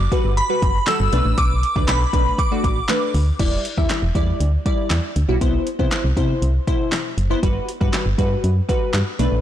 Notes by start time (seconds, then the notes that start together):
0.12 G3 F#4 B4, kick, closed hi-hat
0.25 G1
0.37 B5, closed hi-hat
0.49 G3 F#4 B4
0.62 F#1, kick, closed hi-hat
0.87 G3 F#4 A4 E6, snare, clap, closed hi-hat
1.00 G1
1.12 B1 A3 D4 B4, closed hi-hat
1.25 A1
1.38 B1 D6, kick, closed hi-hat
1.63 closed hi-hat
1.76 D2 A3 D4 B4, kick
1.88 B1 B5, snare, clap, closed hi-hat
2.13 B1 A3 D4 B4, kick, closed hi-hat
2.38 D6, kick, closed hi-hat
2.51 A3 D4 F#4
2.64 A1, kick, closed hi-hat
2.89 A3 D4 B4, snare, clap, closed hi-hat
3.14 D2, open hi-hat
3.39 E1 G3 E4 D5, kick, closed hi-hat, crash
3.65 closed hi-hat
3.77 E2 G3 E4 E5, kick
3.90 snare, clap, closed hi-hat
4.03 E1
4.15 E2 G3 E4 D5, kick, closed hi-hat
4.40 D2, closed hi-hat
4.66 G3 E4 D5, kick, closed hi-hat
4.90 E2, snare, clap, closed hi-hat
5.16 D2, closed hi-hat
5.28 B1 G3 E4 F#4
5.41 C2 B3 E4 C5, kick, closed hi-hat
5.67 closed hi-hat
5.79 C3 B3 E4 C5, kick
5.92 snare, clap, closed hi-hat
6.04 C2
6.17 B2 C3 E4 C5, kick, closed hi-hat
6.42 C2, closed hi-hat
6.67 B2 E4 C5, kick, closed hi-hat
6.92 snare, clap, closed hi-hat
7.18 F#1, closed hi-hat
7.30 B3 E4 C5
7.43 G1 G3 F#4 B4, kick, closed hi-hat
7.69 closed hi-hat
7.81 G2 G3 F#4 B4, kick
7.93 snare, clap, closed hi-hat
8.06 G1
8.18 G2 G3 F#4 B4, kick, closed hi-hat
8.44 F#2, closed hi-hat
8.69 G3 F#4 B4, kick, closed hi-hat
8.94 G2, snare, clap, closed hi-hat
9.19 B1 A3 D4 B4, closed hi-hat
9.32 A1